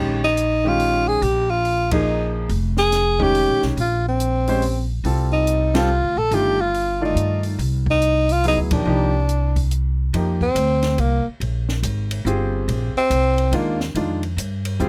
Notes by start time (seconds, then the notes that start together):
Already playing: A#1 D#3 G#3 C#4 G4
0.24 D#4
0.37 closed hi-hat
0.64 D#3 G#3 C#4 F4 G4
0.80 open hi-hat
1.08 G#4
1.22 A#1 G4, open hi-hat
1.50 F4
1.65 open hi-hat
1.91 F3 A#3 D#4 G#4, kick, ride
2.49 F1, open hi-hat
2.77 G#4, snare
2.92 snare, closed hi-hat
3.19 D#3 G#3 C#4 G4, kick
3.35 open hi-hat
3.48 A#1
3.62 B1, snare
3.77 A#1 F4, open hi-hat
4.08 C4
4.20 closed hi-hat
4.47 G#3 C#4 G4 C5, open hi-hat
4.62 open hi-hat
5.04 C2 G3 C4 F4 A4, open hi-hat
5.33 D#4
5.47 closed hi-hat
5.74 G3 C4 F4 A4, snare, ride
6.03 D2
6.17 A#1 A4
6.31 G1 D#3 A3 D4 F4 G4, open hi-hat
6.61 F4
6.74 open hi-hat
7.01 D#3 A3 F4 D5
7.05 D#4
7.16 G2, closed hi-hat
7.43 open hi-hat
7.59 C2, open hi-hat
7.86 kick
7.91 D#4
8.02 closed hi-hat
8.29 F4, open hi-hat
8.44 F#3 B3 E4 G#4, open hi-hat
8.48 D#4
8.57 D2
8.71 A#1 D#3 F3 A#3 D4 G4, kick, ride
8.85 C2 F3 A#3 D#4 G4
9.29 closed hi-hat
9.56 kick, open hi-hat
9.71 closed hi-hat
10.13 F2 F3 A#3 D#4 G4, ride
10.41 C4, kick
10.55 D2, hi-hat pedal, ride
10.83 snare, ride
10.98 C2 A#3, ride
11.26 muted upright bass stroke
11.40 A#1, ride
11.69 snare
11.83 G#1, hi-hat pedal, ride
12.11 ride
12.25 G1 C4 F4 G4 G#4, hi-hat pedal
12.68 A#1, ride
12.95 C4, muted upright bass stroke
13.10 C2, hi-hat pedal, ride
13.38 ride
13.52 D#2 D#3 G#3 A#3 D4 F4, ride
13.80 snare
13.95 F2 D#3 G#3 D4 F4, ride
14.23 ride
14.37 G2, hi-hat pedal, ride
14.65 ride
14.79 D#2 G3 C4 F4 G#4, hi-hat pedal